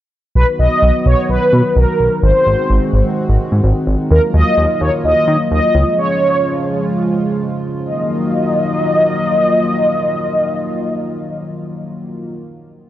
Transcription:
0.35 B1 D#3 F#3 B3 F#4 B4
0.59 B1 D#5
0.82 B1
1.06 B1 C#5
1.29 B1 B4
1.53 B2
1.76 B1 A#4
1.99 B1
2.23 G#1 G#3 C4 F#4 C5
2.46 G#1
2.70 G#1
2.93 G#1
3.29 G#1
3.52 G#2
3.64 G#1
3.87 G#1
4.10 D#2 F#3 A#3 F4 A#4
4.34 D#2 D#5
4.57 D#2
4.75 D#5
4.81 D#2 C#5
5.04 D#2 D#5
5.28 D#3
5.51 D#2 D#5
5.74 C#2 C#3 F3 G#3 F4
5.98 C#5
7.86 D#3 F#3 A#3 F4 D#5

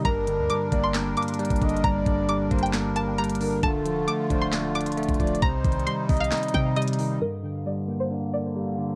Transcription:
Already playing: G3
0.04 G1 G2 D4 A#4 A#5, kick, closed hi-hat
0.27 D3, closed hi-hat
0.39 D2
0.50 G3 D6, closed hi-hat
0.72 G1 A#3 D5, kick, closed hi-hat
0.84 C6
0.94 D4, snare, clap, closed hi-hat
1.17 A#3 D6, closed hi-hat
1.23 closed hi-hat
1.28 closed hi-hat
1.34 closed hi-hat
1.39 G3, closed hi-hat
1.45 closed hi-hat
1.50 G1, kick, closed hi-hat
1.56 closed hi-hat
1.62 G1 D3 D#5, kick, closed hi-hat
1.69 closed hi-hat
1.77 closed hi-hat
1.84 G1 G2 D5 A#5, kick, closed hi-hat
2.06 G1 D3, kick, closed hi-hat
2.29 G3 D6, closed hi-hat
2.51 G1 A#3 C5, kick, closed hi-hat
2.59 closed hi-hat
2.63 G5, closed hi-hat
2.73 D4, snare, clap, closed hi-hat
2.96 A#3 A5, closed hi-hat
3.18 G3 A#5, closed hi-hat
3.24 closed hi-hat
3.30 closed hi-hat
3.35 closed hi-hat
3.40 D3 A#4, open hi-hat
3.63 D1 D3 A3 F4 A4 A5, kick, closed hi-hat
3.85 F3, closed hi-hat
4.08 A3 D6, closed hi-hat
4.30 D1 D4 C5, kick, closed hi-hat
4.42 C6
4.52 D5, snare, clap, closed hi-hat
4.75 D4 D6, closed hi-hat
4.81 closed hi-hat
4.86 C1, closed hi-hat
4.92 closed hi-hat
4.97 A3, closed hi-hat
5.03 closed hi-hat
5.09 D1, kick, closed hi-hat
5.14 closed hi-hat
5.20 D1 F3 D5, kick, closed hi-hat
5.27 closed hi-hat
5.35 closed hi-hat
5.42 C2 C3 G3 D#4 C5 A#5, kick, closed hi-hat
5.64 C2 D#3, kick, closed hi-hat
5.72 closed hi-hat
5.80 closed hi-hat
5.87 G3 C6, closed hi-hat
6.09 C2 C4 D#5, kick, closed hi-hat, open hi-hat
6.17 F5, closed hi-hat
6.24 closed hi-hat
6.31 D#4, snare, clap, closed hi-hat
6.37 closed hi-hat
6.43 closed hi-hat
6.48 closed hi-hat
6.54 C3 C4 G5, kick, closed hi-hat
6.76 G3 D#5, closed hi-hat
6.82 closed hi-hat
6.88 closed hi-hat
6.93 closed hi-hat
6.99 D#3, open hi-hat
7.21 G2 D3 A#3 A#4
7.43 D3
7.66 G3 D5
7.88 A#3
8.00 C5
8.11 D4
8.33 A#3 D5
8.56 G3
8.78 D3

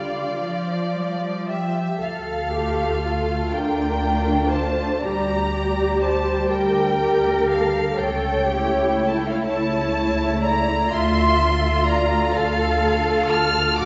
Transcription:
Already playing: D3 G3 F4 D5 F5
0.44 F3
0.95 G3
1.48 F3 G4 E5
2.00 D2 A4 F5
2.52 A3 F4 G4
3.03 F4
3.53 D2 D4 A#4 G5
4.03 A3 F4
4.53 C5 A5
5.01 D2 G3 G4 D5 A#5
5.53 G3 G4
6.01 C5 A5
6.50 D2 A#4 G5
7.00 G3 G4
7.49 A4 F5
7.98 C#2 A4 C#5 G5
8.48 A3 E4 G4
8.98 E4
9.09 A5
9.18 G5
9.28 F5
9.37 G5
9.46 C#2 C#5 A5
9.95 A3 E4
10.43 D5 A#5
10.91 D2 A3 F4 E5 C6
11.39 A3 F4
11.87 D5 A#5
12.35 D2 A4 F5
12.83 A3 F4
13.31 A5 F6
13.78 A1 F#4 F#5 D6

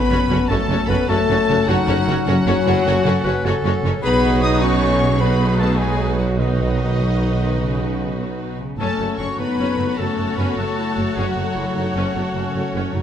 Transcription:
Already playing: F#2 F#3 A3 B3 C#4 B4 C#5 B5
0.09 F#1 F#2 C#4 F#4 A4 C#5
0.28 F#1 F#2 A3 C#4 F#4
0.32 A4 C#5
0.48 F#1 F#2 C#3 A3 C#4 F#4 A4 A5
0.53 A4 C#5
0.67 F#1 F#2 A3 C#4 F#4
0.72 A4 C#5
0.88 F#1 F#2 B3 C#4 F#4 B4 B5
0.92 A4 C#5
1.08 F#1 F#2 A3 C#4 F#4 A4 C#5 A5
1.28 F#1 F#2 C#4 F#4 A4 C#5
1.49 F#1 F#2 A3 C#4 F#4 A4 C#5
1.66 F#1 F#2 F#3 C#4 D#4 F#4 A4 C#5 F#5
1.87 F#1 F#2 C#3 C#4 F#4 A4 C#5
2.07 F#1 F#2 F#4 A4 C#5
2.11 C#4
2.24 F#1 F#2 F#3 C#4 F#4 A4 C#5 F#5
2.45 F#1 F#2 C#4 D#4 F#4 A4 C#5
2.63 F#1 F#2 A3 E4 F#4 A4 C#5
2.67 C#4
2.83 F#1 F#2 C#3 C#4 F#4 A4 C#5
3.04 F#1 F#2 C#4 F#4 A4
3.08 A4 C#5
3.24 F#1 F#2 C#4 F#4 A4 B4 C#5
3.43 F#1 F#2 C#4 F#4 A4 C#5
3.63 F#1 F#2 C#4 F#4 A4 C#5
3.83 F#1 F#2 A3 C#4 F#4 A4 C#5
4.02 B1 B2 F#3 B3 D#4 F#4 G#4 B4 B5
4.42 D#4 D#5 D#6
4.61 C#4 F#4 B4 C#5 C#6
4.81 F#4 A4
5.01 B3 G#4
5.19 F#3 B3 D#4 F#4 B4 B5
5.41 B3
5.58 A3 F#4 A4 A5
5.78 G#3 G#4 G#5
5.99 F#4
6.18 F#3 F#4 F#5
6.38 B2 D#3 F#3 B3 D#4 F#4 B4 D#5
6.59 F#3
6.80 F#4
6.99 B2
7.19 F#4
7.39 D#3 B3
7.59 C#3 F#3
7.79 B3
7.99 F#4
8.18 B2 B4
8.38 F#4
8.58 C#3 B3
8.77 F#1 F#2 F#3 A3 C#4 F#4 A4 C#5 A5
8.98 F#1 F#2 A3
9.17 F#1 F#2 F#3 C#4 F#4 C#5 C#6
9.37 F#1 F#2 A3 B3 D#4 B4 C#5 B5
9.57 F#1 F#2 C#4 F#4
9.77 F#1 F#2 A3
9.97 F#1 F#2 C#3 F#3 A3 C#4 A4 A5
10.17 F#1 F#2 A3
10.36 F#1 F#2 B3 C#4 F#4 B4 B5
10.56 F#1 F#2 A3 F#4 A4 C#5 A5
10.77 E4 F#4
10.96 F#1 F#2 A3 F#4
11.15 F#1 F#2 F#3 C#4 F#4 G#4 F#5
11.35 F#1 F#2 C#3 A3 F#4
11.55 F#1 F#2 F#3 E4 F#4
11.75 F#1 F#2 F#3 A3 D#4 F#4 C#5 F#5
11.93 F#1 F#2 C#4 F#4
12.14 F#1 F#2 A3 B3
12.33 F#1 F#2 C#3 F#3 C#4
12.53 F#1 F#2 A3
12.73 F#1 F#2 C#4 F#4
12.93 F#1 F#2 A3 D#4 C#5

